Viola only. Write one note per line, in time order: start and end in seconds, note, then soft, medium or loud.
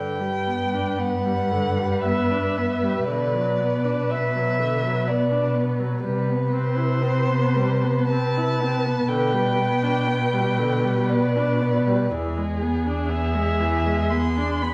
0.00 0.21 D3 soft
0.20 0.49 G3 soft
0.48 0.75 B3 soft
0.74 1.00 D4 soft
0.98 1.27 B3 soft
1.26 1.53 G3 soft
1.51 1.80 D3 soft
1.79 2.07 G3 soft
2.05 2.32 B3 soft
2.31 2.59 D4 soft
2.58 2.85 B3 soft
2.83 3.08 G3 soft
3.09 3.35 D3 soft
3.34 3.61 F#3 soft
3.59 3.86 B3 soft
3.84 4.12 D4 soft
4.11 4.37 B3 soft
4.35 4.60 F#3 soft
4.58 4.84 D3 soft
4.82 5.09 F#3 soft
5.07 5.33 B3 soft
5.31 5.56 D4 soft
5.54 5.81 B3 soft
5.79 6.02 F#3 soft
6.03 6.30 G3 soft
6.28 6.54 B3 soft
6.53 6.78 C4 soft
6.77 7.04 E4 soft
7.02 7.30 C4 soft
7.29 7.58 B3 soft
7.56 7.85 G3 soft
7.84 8.14 B3 soft
8.12 8.39 C4 soft
8.37 8.62 E4 soft
8.61 8.87 C4 soft
8.85 9.10 B3 soft
9.10 9.34 D3 soft
9.33 9.61 G3 soft
9.59 9.85 B3 soft
9.83 10.09 D4 soft
10.08 10.35 B3 soft
10.33 10.60 G3 soft
10.59 10.86 D3 soft
10.85 11.12 G3 soft
11.11 11.37 B3 soft
11.36 11.63 D4 soft
11.61 11.88 B3 soft
11.87 12.11 G3 soft
12.12 12.39 E3 soft
12.38 12.64 G#3 soft
12.62 12.88 B3 soft
12.86 13.11 D4 soft
13.10 13.36 B3 soft
13.35 13.61 G#3 soft
13.60 13.87 E3 soft
13.86 14.13 G#3 soft
14.12 14.39 B3 soft
14.37 14.64 D4 soft
14.63 14.74 B3 soft